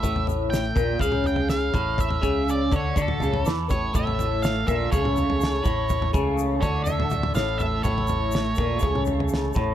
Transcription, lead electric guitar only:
X:1
M:4/4
L:1/8
Q:1/4=123
K:none
V:1 name="Lead electric guitar"
e z g2 f g f2 | e2 d ^c A2 z c | e2 f e ^c4- | ^c z2 c e2 f e |
^c4- c z3 |]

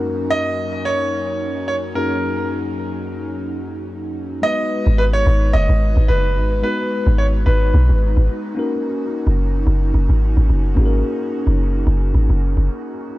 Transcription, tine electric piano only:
X:1
M:4/4
L:1/8
Q:"Swing 16ths" 1/4=109
K:G#m
V:1 name="Tine electric piano"
[F,,A,CDFA]6- [F,,A,CDFA] [F,,A,CDFG]- | [F,,A,CDFG]6- [F,,A,CDFG] z | [G,B,DFB]8 | [G,B,DFB]6- [G,B,DFB] [A,CDFA]- |
[A,CDFA]6- [A,CDFA] [A,CDFGA]- | [A,CDFGA]6- [A,CDFGA] z |]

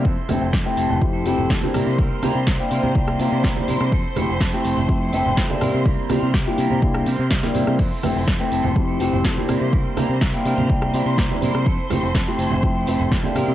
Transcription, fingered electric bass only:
X:1
M:4/4
L:1/16
Q:1/4=124
K:F
V:1 name="Fingered electric bass" clef=bass
F,, z F,,, F,,, F,, z F,,, F,,, F,,2 F,,, F,,, F,, z C, C, | C,, z C, C, C,, z C, C, C,,2 C, C, C,, z C, C, | F,, z F,,, F,,, F,, z F,,, F,,, F,,2 F,,, F,,, F,, z C, C, | C,, z C, C, C,, z C, C, C,,2 C, C, C,, z C, C, |
F,, z F,,, F,,, F,, z F,,, F,,, F,,2 F,,, F,,, F,, z C, C, | C,, z C, C, C,, z C, C, C,,2 C, C, C,, z C, C, | F,, z F,,, F,,, F,, z F,,, F,,, F,,2 F,,, F,,, F,, z C, C, |]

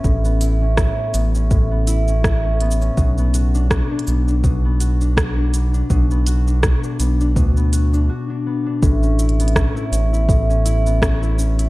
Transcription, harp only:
X:1
M:4/4
L:1/16
Q:"Swing 16ths" 1/4=82
K:A
V:1 name="Harp"
[A,,B,CE] B, E C E C B, C A,, B, E C E C B, C | B,, B, F D F D B, D B,, B, F D F D B, D | B,, B, F D F D B, D B,, B, F D F D B, D | A,, C E B, C E C E A,, C E B, C E C E |]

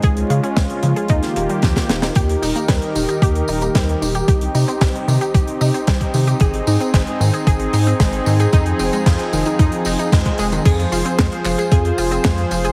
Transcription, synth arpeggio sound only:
X:1
M:4/4
L:1/16
Q:1/4=113
K:Fm
V:1 name="Synth arpeggio sound"
A z F D A, z F, A E z B, G, F, z E, E | G z E B, G, z E, G G z E B, G, z E, G | G z E C G, z E, G G z E C G, z E, G | A z E C A, z E, A A z E C A, z E, A |
E z C A, F, z E, E E z E E A, A, A, E, | A z F C A, z F, A A z F C A, z F, A |]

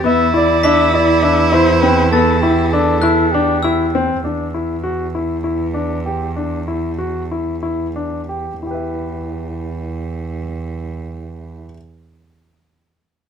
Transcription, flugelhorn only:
X:1
M:7/8
L:1/8
Q:1/4=96
K:Em
V:1 name="Flugelhorn"
e d e d e c B | A G A2 G2 z | z6 z | z6 z |
z6 z | z6 z |]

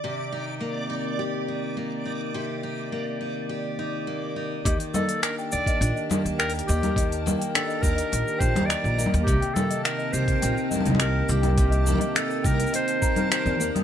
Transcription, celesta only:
X:1
M:4/4
L:1/16
Q:1/4=104
K:Eblyd
V:1 name="Celesta"
z16 | z16 | e z e z2 g z e z e z2 g z e z | e z2 g z e z e z2 g z e z e z |
z g z e z e z2 g z e z e z2 g | z e z e z2 g z e z b E z d z e' |]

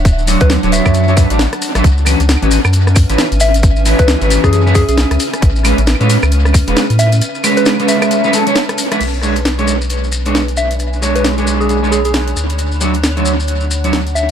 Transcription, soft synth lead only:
X:1
M:4/4
L:1/16
Q:"Swing 16ths" 1/4=134
K:Bdor
V:1 name="Soft synth lead"
z3 B z2 e4 z6 | z12 z2 e z | z3 B z3 G G z G G z4 | z12 z2 e z |
z3 B z2 e4 z6 | z12 z2 e z | z3 B z3 G G z G G z4 | z12 z2 e z |]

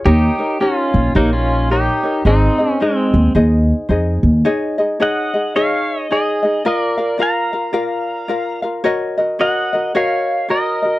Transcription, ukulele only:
X:1
M:4/4
L:1/8
Q:"Swing" 1/4=109
K:Ab
V:1 name="Ukulele"
[EGBd] [EBd] [EGBd]2 [EGBd]2 [EGBd] [EBd] | [EAce] [EAe] [EAce]2 [EAce]2 [EAce]2 | [K:Db] [EAde] [EAe] [EAde] [EAe] [EAde]2 [EAde] [EAe] | [FB=df] [FBf] [FBdf] [FBf] [FBdf]2 [FBdf] [FBf] |
[GBde] [GBe] [GBde] [GBe] [GBde]2 [GBde] [GBe] |]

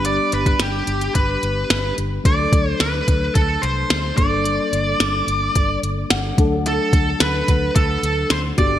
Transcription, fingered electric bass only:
X:1
M:4/4
L:1/8
Q:1/4=109
K:Dmix
V:1 name="Fingered electric bass" clef=bass
G,,, G,,, G,,, G,,, G,,, G,,, G,,, G,,, | D,, D,, D,, D,, D,, C,, D,, G,,,- | G,,, G,,, G,,, G,,, G,,, G,,, G,,, D,,- | D,, D,, D,, D,, D,, D,, D,, G,,, |]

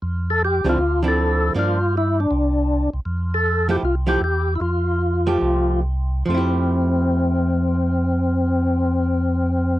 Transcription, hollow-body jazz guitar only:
X:1
M:4/4
L:1/8
Q:"Swing" 1/4=151
K:F
V:1 name="Hollow-body jazz guitar"
z3 [D,F,CE] z [D,F,CE]3 | [F,B,D] z6 z | z3 [F,A,EG] z [F,A,EG] z2 | z3 [F,A,G]3 z2 |
[F,A,EG]8- | [F,A,EG]8 |]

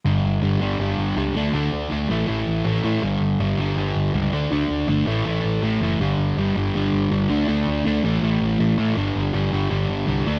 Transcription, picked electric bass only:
X:1
M:4/4
L:1/8
Q:1/4=162
K:Ador
V:1 name="Picked electric bass" clef=bass
G,,, G,,, G,,, G,,, G,,, G,,, ^C,, D,, | D,, D,, D,, A,,, A,,, A,,, A,,, A,, | G,,, G,,, G,,, G,,, G,,, G,,, ^C,, D,, | D,, D,, G,,, A,,, A,,, A,,, A,,, F,,, |
G,,, G,,, G,,, G,,, G,,, G,,, G,,, D,, | D,, D,, D,, A,,, A,,, A,,, A,,, A,, | G,,, G,,, G,,, G,,, G,,, G,,, C,, D,, |]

